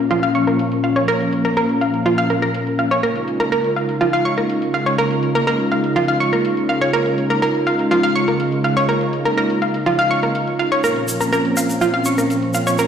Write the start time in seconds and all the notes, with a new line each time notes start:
Already playing: A#2 F3 A#3 C#4
0.11 F4, closed hi-hat
0.23 F5, closed hi-hat
0.35 C#6, closed hi-hat
0.47 A#4, closed hi-hat
0.59 closed hi-hat
0.72 closed hi-hat
0.84 F5, closed hi-hat
0.96 C#5, closed hi-hat
1.08 A#4, closed hi-hat
1.21 closed hi-hat
1.33 closed hi-hat
1.45 A#4, closed hi-hat
1.57 A#4, closed hi-hat
1.69 closed hi-hat
1.81 F5, closed hi-hat
1.94 closed hi-hat
2.06 F4, closed hi-hat
2.18 F5, closed hi-hat
2.30 A#4, closed hi-hat
2.42 A#4, closed hi-hat
2.54 closed hi-hat
2.67 closed hi-hat
2.79 F5, closed hi-hat
2.91 C#5, closed hi-hat
3.03 C#3 G#3 D#4 F4 A#4, closed hi-hat
3.16 closed hi-hat
3.28 closed hi-hat
3.40 A#4, closed hi-hat
3.52 A#4, closed hi-hat
3.64 closed hi-hat
3.76 F5, closed hi-hat
3.89 closed hi-hat
4.01 F4, closed hi-hat
4.13 F5, closed hi-hat
4.25 C#6, closed hi-hat
4.38 A#4, closed hi-hat
4.50 closed hi-hat
4.62 closed hi-hat
4.74 F5, closed hi-hat
4.86 C#5, closed hi-hat
4.98 A#4, closed hi-hat
5.11 closed hi-hat
5.23 closed hi-hat
5.35 A#4, closed hi-hat
5.47 A#4, closed hi-hat
5.60 closed hi-hat
5.72 F5, closed hi-hat
5.84 closed hi-hat
5.96 F4, closed hi-hat
6.08 F5, closed hi-hat
6.20 C#6, closed hi-hat
6.33 A#4, closed hi-hat
6.45 closed hi-hat
6.57 closed hi-hat
6.69 F5, closed hi-hat
6.81 C#5, closed hi-hat
6.93 A#4, closed hi-hat
7.06 closed hi-hat
7.18 closed hi-hat
7.30 A#4, closed hi-hat
7.42 A#4, closed hi-hat
7.55 closed hi-hat
7.67 F5, closed hi-hat
7.79 closed hi-hat
7.91 F4, closed hi-hat
8.03 F5, closed hi-hat
8.15 C#6, closed hi-hat
8.28 A#4, closed hi-hat
8.40 closed hi-hat
8.52 closed hi-hat
8.64 F5, closed hi-hat
8.77 C#5, closed hi-hat
8.89 A#4, closed hi-hat
9.01 closed hi-hat
9.13 closed hi-hat
9.25 A#4, closed hi-hat
9.37 A#4, closed hi-hat
9.50 closed hi-hat
9.62 F5, closed hi-hat
9.74 closed hi-hat
9.86 F4, closed hi-hat
9.99 F5, closed hi-hat
10.11 C#6, closed hi-hat
10.23 A#4, closed hi-hat
10.35 closed hi-hat
10.47 closed hi-hat
10.59 F5, closed hi-hat
10.72 C#5, closed hi-hat
10.84 A#2 F3 C4 C#4 A#4, closed hi-hat, shaker
10.96 closed hi-hat
11.08 closed hi-hat, shaker
11.21 A#4, closed hi-hat, shaker
11.33 A#4, closed hi-hat, shaker
11.45 closed hi-hat
11.57 F5, closed hi-hat, shaker
11.69 closed hi-hat, shaker
11.81 F4, closed hi-hat, shaker
11.94 F5, closed hi-hat
12.05 C#6, closed hi-hat, shaker
12.18 A#4, closed hi-hat, shaker
12.30 closed hi-hat, shaker
12.42 closed hi-hat
12.54 F5, closed hi-hat, shaker
12.67 C#5, closed hi-hat, shaker
12.78 A#4, closed hi-hat, shaker